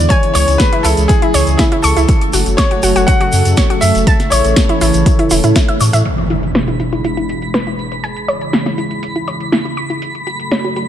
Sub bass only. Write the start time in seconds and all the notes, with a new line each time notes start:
0.35 C#2
0.48 C#2
0.85 C#2
0.97 C#2
1.34 C#2
1.47 C#2
1.84 C#2
1.97 C#2
2.34 F#1
2.46 F#1
2.83 F#1
2.96 F#1
3.33 F#2
3.45 F#2
3.82 F#2
3.95 F#1
4.32 A1
4.45 A1
4.81 A1
4.94 A1
5.31 E1
5.44 A2
5.81 A2
5.93 A2